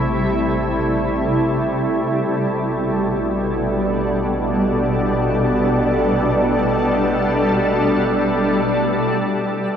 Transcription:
0.00 2.05 A1 medium
0.00 2.08 C3 medium
0.00 9.77 G3 medium
0.00 9.66 A3 medium
0.00 4.70 E4 medium
0.00 9.66 E4 medium
0.00 9.77 A4 medium
2.07 9.51 A1 medium
2.07 9.56 B2 medium
2.95 9.77 D4 medium
9.57 9.77 C3 medium
9.57 9.77 E6 medium

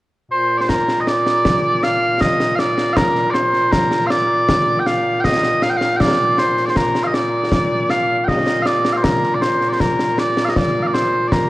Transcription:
0.31 11.49 A#2 medium
0.31 0.58 C5 loud
0.58 0.69 C5 medium
0.58 0.61 D5 medium
0.69 1.00 A#4 medium
0.69 concert bass drum soft
0.69 snare medium
0.88 snare medium
1.00 1.07 D#5 medium
1.07 1.83 D5 loud
1.07 snare medium
1.26 snare medium
1.45 concert bass drum medium
1.45 snare loud
1.83 2.21 F5 loud
1.83 snare medium
2.21 2.56 D#5 medium
2.21 concert bass drum medium
2.21 snare medium
2.40 snare medium
2.56 2.93 D5 medium
2.56 2.59 F5 medium
2.56 snare medium
2.78 snare medium
2.93 3.30 A#4 loud
2.93 2.96 F5 loud
2.93 concert bass drum medium
2.93 snare loud
3.15 snare soft
3.30 3.72 C5 loud
3.30 3.34 D5 loud
3.35 snare medium
3.53 snare soft
3.72 4.07 A#4 medium
3.72 concert bass drum medium
3.72 snare loud
3.91 snare medium
4.07 4.79 D5 loud
4.07 4.10 F5 loud
4.07 snare medium
4.49 concert bass drum medium
4.49 snare loud
4.79 4.86 G5 medium
4.86 5.20 F5 loud
4.86 snare medium
5.20 5.24 G5 loud
5.20 concert bass drum medium
5.20 snare medium
5.24 5.63 D#5 loud
5.43 snare medium
5.62 5.70 F5 loud
5.62 snare medium
5.70 5.77 G5 medium
5.77 5.96 F5 medium
5.81 snare medium
5.96 6.00 G5 loud
5.96 concert bass drum medium
5.96 snare loud
6.00 6.39 D5 loud
6.19 snare soft
6.38 6.66 C5 medium
6.38 snare medium
6.57 snare soft
6.66 6.70 D5 medium
6.70 6.77 C5 medium
6.76 7.04 A#4 medium
6.76 concert bass drum medium
6.76 snare medium
6.95 snare medium
7.04 7.14 D#5 medium
7.04 7.07 F5 medium
7.14 7.90 D5 medium
7.14 snare medium
7.52 concert bass drum medium
7.52 snare loud
7.90 8.24 F5 loud
7.90 snare medium
8.24 8.62 D#5 medium
8.24 8.28 G5 medium
8.24 concert bass drum medium
8.24 snare medium
8.47 snare medium
8.62 8.93 D5 medium
8.62 8.66 F5 medium
8.62 snare medium
8.85 snare medium
8.93 8.97 F5 medium
8.97 9.03 C5 medium
9.03 9.35 A#4 medium
9.03 concert bass drum medium
9.03 snare loud
9.23 snare soft
9.35 9.42 D5 medium
9.42 9.69 C5 medium
9.42 snare medium
9.61 snare soft
9.69 9.73 D5 medium
9.73 9.81 C5 medium
9.80 10.19 A#4 medium
9.80 concert bass drum medium
9.80 snare medium
9.99 snare medium
10.18 10.45 D5 medium
10.18 snare medium
10.37 snare medium
10.45 10.49 F5 medium
10.49 10.56 D#5 medium
10.56 10.82 D5 medium
10.56 concert bass drum medium
10.56 snare loud
10.82 10.87 F5 medium
10.87 10.94 D5 medium
10.94 11.28 C5 medium
10.94 snare medium
11.28 11.32 D5 medium
11.32 11.49 A#4 medium
11.32 concert bass drum medium
11.32 snare medium

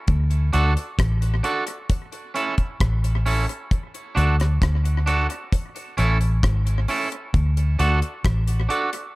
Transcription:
0.08 0.50 D2 loud
0.08 kick loud
0.08 closed hi-hat medium
0.31 closed hi-hat soft
0.53 0.75 D2 loud
0.53 0.72 D4 medium
0.53 0.73 F#4 medium
0.53 0.73 A4 loud
0.53 closed hi-hat medium
0.77 closed hi-hat soft
0.99 1.40 A1 medium
0.99 kick loud
0.99 cross-stick loud
0.99 closed hi-hat loud
1.22 closed hi-hat medium
1.44 1.63 D4 medium
1.44 1.63 F#4 medium
1.44 1.64 A4 loud
1.44 closed hi-hat medium
1.66 muted clean electric guitar stroke soft
1.66 closed hi-hat medium
1.90 kick loud
1.90 closed hi-hat loud
2.12 closed hi-hat soft
2.34 2.54 C#4 medium
2.34 2.54 E4 medium
2.34 2.55 A4 medium
2.34 closed hi-hat medium
2.58 kick medium
2.58 closed hi-hat medium
2.80 3.45 A1 loud
2.80 kick loud
2.80 cross-stick loud
2.80 closed hi-hat medium
3.04 closed hi-hat medium
3.26 3.45 C#4 medium
3.26 3.45 E4 medium
3.26 3.45 A4 loud
3.26 open hi-hat medium
3.49 closed hi-hat medium
3.71 kick loud
3.71 closed hi-hat medium
3.94 closed hi-hat soft
4.15 4.58 D2 loud
4.15 4.35 D4 medium
4.15 4.35 F#4 medium
4.15 4.36 A4 medium
4.15 closed hi-hat medium
4.40 cross-stick medium
4.40 closed hi-hat medium
4.62 5.26 D2 medium
4.62 kick loud
4.62 cross-stick loud
4.62 closed hi-hat medium
4.85 closed hi-hat medium
5.06 5.26 D4 medium
5.06 5.26 F#4 medium
5.06 5.27 A4 loud
5.06 closed hi-hat medium
5.30 muted clean electric guitar stroke soft
5.30 closed hi-hat medium
5.52 kick loud
5.52 closed hi-hat loud
5.76 closed hi-hat soft
5.97 6.40 A1 loud
5.97 6.17 C#4 medium
5.97 6.17 E4 medium
5.97 6.18 A4 loud
5.97 closed hi-hat medium
6.21 closed hi-hat medium
6.43 6.85 G#1 loud
6.43 kick loud
6.43 cross-stick loud
6.43 closed hi-hat medium
6.67 closed hi-hat medium
6.88 7.08 C#4 medium
6.88 7.08 E4 medium
6.88 7.09 A4 loud
6.88 open hi-hat medium
7.12 closed hi-hat medium
7.34 7.76 D2 loud
7.34 kick loud
7.34 closed hi-hat medium
7.57 closed hi-hat soft
7.79 8.00 D2 loud
7.79 7.98 D4 medium
7.79 7.99 F#4 loud
7.79 7.99 A4 loud
7.79 closed hi-hat medium
8.02 closed hi-hat soft
8.25 8.66 A1 medium
8.25 kick loud
8.25 cross-stick loud
8.25 closed hi-hat medium
8.47 closed hi-hat medium
8.69 8.89 D4 medium
8.69 8.89 F#4 medium
8.69 8.89 A4 loud
8.69 closed hi-hat medium
8.93 muted clean electric guitar stroke soft
8.93 closed hi-hat medium

